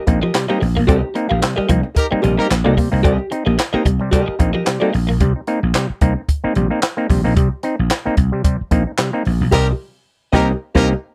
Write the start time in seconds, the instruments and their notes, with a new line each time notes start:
0.07 slap bass A#1, clav A#3 C4 D#4, muted hollow-body jazz guitar stroke, kick, closed hi-hat
0.22 clean electric guitar F3, clav C4 D#4, hollow-body jazz guitar G4 A#4 D#5
0.34 clav C3 G3, muted hollow-body jazz guitar stroke, snare, clap, closed hi-hat
0.48 clean electric guitar G3, clav A#3 C4 D#4, hollow-body jazz guitar G4 A#4 D#5
0.61 slap bass A#1, clav C4 D#4, muted hollow-body jazz guitar stroke, muted clean electric guitar stroke, open hi-hat
0.75 slap bass A#1, clean electric guitar A#3, muted hollow-body jazz guitar stroke
0.87 slap bass C2, clav C3 G3, clean electric guitar C4, hollow-body jazz guitar G4 A#4 D#5, kick, closed hi-hat
1.02 clav C4 D#4, muted hollow-body jazz guitar stroke
1.14 clav A#3 C4 D#4, muted hollow-body jazz guitar stroke, muted clean electric guitar stroke, closed hi-hat
1.29 slap bass A#1, clean electric guitar A#3, hollow-body jazz guitar G4 A#4 F5
1.41 clav C3 G3, muted hollow-body jazz guitar stroke, muted clean electric guitar stroke, snare, clap, closed hi-hat
1.56 clean electric guitar G3, hollow-body jazz guitar G4 A#4 D#5, muted slap bass stroke
1.68 slap bass C2, clean electric guitar F3, clav A#3 C4 D#4, muted hollow-body jazz guitar stroke, kick, closed hi-hat
1.83 clav C4 D#4, muted hollow-body jazz guitar stroke
1.95 horn section D#4 G4 A#4, muted hollow-body jazz guitar stroke, kick, closed hi-hat
2.11 clean electric guitar G3, clav A#3 C4 D#4, muted hollow-body jazz guitar stroke, muted slap bass stroke
2.22 slap bass A#1, clav C3 G3, hollow-body jazz guitar G4 A#4 D#5, muted clean electric guitar stroke, closed hi-hat
2.37 clean electric guitar G3, clav A#3 C4 D#4, horn section D#4 G4 A#4, muted hollow-body jazz guitar stroke
2.49 slap bass A#1, muted hollow-body jazz guitar stroke, muted clean electric guitar stroke, snare, clap, closed hi-hat
2.64 slap bass C2, clav A#3 C4 D#4, clean electric guitar A#3, hollow-body jazz guitar G4 A#4 D#5
2.77 clav C3 G3, clean electric guitar A#3, muted hollow-body jazz guitar stroke, kick, open hi-hat
2.92 slap bass C2, clav A#3 C4 D#4, muted hollow-body jazz guitar stroke
3.03 slap bass C2, clav C3 G3, clean electric guitar C4, hollow-body jazz guitar G4 A#4 D#5, kick, closed hi-hat
3.19 muted hollow-body jazz guitar stroke
3.31 clav C4 D#4, muted hollow-body jazz guitar stroke, muted clean electric guitar stroke, closed hi-hat
3.46 slap bass A#1, clean electric guitar A#3, hollow-body jazz guitar G4 A#4 D#5
3.57 muted hollow-body jazz guitar stroke, muted clean electric guitar stroke, snare, clap, closed hi-hat
3.73 clav A#3 C4 D#4, clean electric guitar A#3, hollow-body jazz guitar G4 A#4 D#5, muted slap bass stroke
3.85 slap bass C2, clean electric guitar G3, muted hollow-body jazz guitar stroke, kick, closed hi-hat
4.00 clav C3 G3, muted hollow-body jazz guitar stroke
4.11 clav C3 G3, clean electric guitar G3, hollow-body jazz guitar G4 A#4 D#5, kick, closed hi-hat
4.28 muted clean electric guitar stroke, muted slap bass stroke
4.39 slap bass A#1, clav A#3 C4 D#4, muted hollow-body jazz guitar stroke, kick, closed hi-hat
4.53 clean electric guitar F3, clav C4 D#4, hollow-body jazz guitar G4 A#4 D#5
4.65 clav C3 G3, muted hollow-body jazz guitar stroke, snare, clap, closed hi-hat
4.80 clean electric guitar G3, clav A#3 C4 D#4, hollow-body jazz guitar G4 A#4 D#5
4.92 slap bass A#1, clav C4 D#4, muted hollow-body jazz guitar stroke, muted clean electric guitar stroke, open hi-hat
5.07 slap bass A#1, clean electric guitar A#3, muted hollow-body jazz guitar stroke
5.20 slap bass C2, clav C3 G3, kick, closed hi-hat
5.36 clav C4 D#4
5.47 clav A#3 C4 D#4, closed hi-hat
5.63 slap bass A#1
5.74 clav C3 G3, snare, clap, closed hi-hat
5.90 muted slap bass stroke
6.01 slap bass C2, clav A#3 C4 D#4, kick, closed hi-hat
6.17 clav C4 D#4
6.29 kick, closed hi-hat
6.44 clav A#3 C4 D#4, muted slap bass stroke
6.55 slap bass A#1, clav C3 G3, closed hi-hat
6.70 clav A#3 C4 D#4
6.82 snare, clap, closed hi-hat
6.97 clav A#3 C4 D#4
7.10 slap bass A#1, clav C3 G3, kick, open hi-hat
7.24 slap bass A#1, clav A#3 C4 D#4
7.36 slap bass C2, clav C3 G3, kick, closed hi-hat
7.63 clav C4 D#4, closed hi-hat
7.79 slap bass A#1
7.90 snare, clap, closed hi-hat
8.05 clav A#3 C4 D#4, muted slap bass stroke
8.17 slap bass C2, kick, closed hi-hat
8.32 clav C3 G3
8.44 clav C3 G3, kick, closed hi-hat
8.61 muted slap bass stroke
8.71 slap bass A#1, clav A#3 C4 D#4, kick, closed hi-hat
8.87 clav C4 D#4
8.98 clav C3 G3, snare, clap, closed hi-hat
9.13 clav A#3 C4 D#4
9.25 slap bass A#1, clav C4 D#4, open hi-hat
9.41 slap bass A#1
9.51 slap bass C2, clav C3 G3, horn section D#4 G4 A#4, hollow-body jazz guitar G4 A#4 D#5, kick, snare, crash
10.32 slap bass C2, clav A#3 C4 D#4, horn section D#4 G4 A#4, hollow-body jazz guitar G4 A#4 D#5, kick, snare
10.75 slap bass C2, clav A#3 C4 D#4, horn section D#4 G4 A#4, hollow-body jazz guitar G4 A#4 D#5, kick, snare